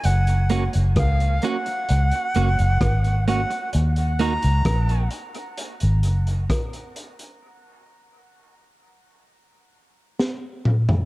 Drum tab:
HH |xxxxxxxxxxxxxxxx|xxxxxxxxxxxxxxxx|----------------|
SD |----r-------r---|----r-------r---|------------o---|
T2 |----------------|----------------|--------------o-|
FT |----------------|----------------|---------------o|
BD |----o-------o---|----o-------o---|----------------|